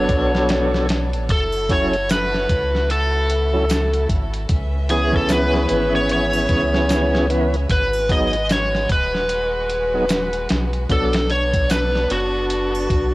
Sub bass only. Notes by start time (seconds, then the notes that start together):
0.10 B1
1.14 A1
1.30 F#1
2.50 C#2
4.10 G#1
4.50 C#2
5.70 G#1
6.50 C#2
7.70 G#1
8.90 D#1
10.51 B1
10.90 B1
12.10 F#1
12.90 B1